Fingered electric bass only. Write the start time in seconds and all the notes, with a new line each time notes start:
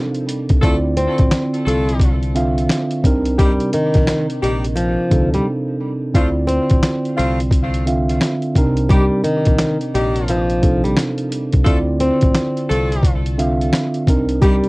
0.50 C2
0.63 D2
1.19 A1
1.67 C2
3.04 C2
3.95 A#1
4.43 A#1
5.12 D2
6.15 D2
6.71 A1
7.19 C2
8.56 C2
9.47 A#1
9.95 A#1
11.54 C2
11.66 D2
12.23 A1
12.70 C2
14.07 C2